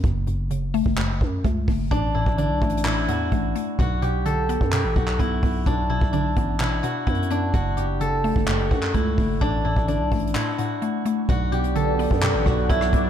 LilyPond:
<<
  \new Staff \with { instrumentName = "Soft synth lead" } { \time 4/4 \key b \minor \tempo 4 = 128 r1 | r1 | r1 | r1 |
r1 | r1 | d''2. e''8 d''8 | }
  \new Staff \with { instrumentName = "Guzheng" } { \time 4/4 \key b \minor r1 | d'8 e'8 d'4 e'8 fis'4. | fis'8 g'8 a'4 g'8 fis'8 e'4 | d'8 e'8 d'4 e'8 fis'8 e'8 d'8 |
fis'8 g'8 a'4 g'8 fis'8 e'4 | d'8 e'8 d'4 e'8 fis'4. | fis'8 g'8 a'4 g'8 fis'8 e'4 | }
  \new Staff \with { instrumentName = "Analog synth pad" } { \time 4/4 \key b \minor r1 | r1 | r1 | r1 |
r1 | r1 | <fis b d'>1 | }
  \new Staff \with { instrumentName = "Synth pluck" } { \clef bass \time 4/4 \key b \minor fis,8 fis,8 cis8 a8 fis,8 fis,8 a8 a8 | a,8 a,8 d8 a8 a,8 a,8 a8 a8 | b,8 b,8 d8 b8 b,8 b,8 b8 b8 | b,8 b,8 d8 b8 b,8 b,8 b8 b8 |
fis,8 fis,8 cis8 a8 fis,8 fis,8 a8 a8 | a,8 a,8 d8 a8 a,8 a,8 a8 a8 | b,8 b,8 d8 b8 b,8 b,8 b8 b8 | }
  \new Staff \with { instrumentName = "808-style bass" } { \clef bass \time 4/4 \key b \minor fis,,4.~ fis,,16 fis,,8. fis,8 cis,8 fis,,8 | a,,8. a,,8 b,,16 a,,4 e,8 a,,8 r8 | b,,4.~ b,,16 fis,8 a,,16 b,,8 b,,8 b,,8 | b,,8. b,,8. a,,4 r8 fis,4 |
fis,,4.~ fis,,16 fis,,8. fis,8 cis,8 fis,,8 | a,,8. a,,8 b,,16 a,,8 r2 | b,,4.~ b,,16 fis,8 a,,16 b,,8 b,,8 b,,8 | }
  \new DrumStaff \with { instrumentName = "Drums" } \drummode { \time 4/4 <hh bd>8 hh8 hh8 hho16 bd16 <hc hh>8 bd8 <hh bd>8 <hho bd>8 | <hh bd>8. bd16 \tuplet 3/2 { hh16 r16 r16 <hh bd>16 hh16 hh16 } hc8 hh8 <hh bd>8 hh8 | <hh bd>8 hh8 hh8 hh16 bd16 <hc hh>8 bd16 hc16 <hh bd>8 <hho bd>8 | <hh bd>8. bd16 hh8 <hh bd>8 <hc hh>8 hh8 \tuplet 3/2 { <hh bd>16 hh16 hh16 hh16 r16 r16 } |
<hh bd>8 hh8 hh8 hho16 bd16 <hc hh>8 bd16 hc16 <hh bd>8 <hho bd>8 | <hh bd>8. bd16 \tuplet 3/2 { hh16 r16 r16 <hh hho bd>16 hh16 hh16 } <hc hh>8 hh8 hh8 hh8 | <hh bd>8 hh16 hh16 hh8 hho16 bd16 <hc hh>8 <bd ss>8 <hh bd>16 ss16 <hh bd>8 | }
>>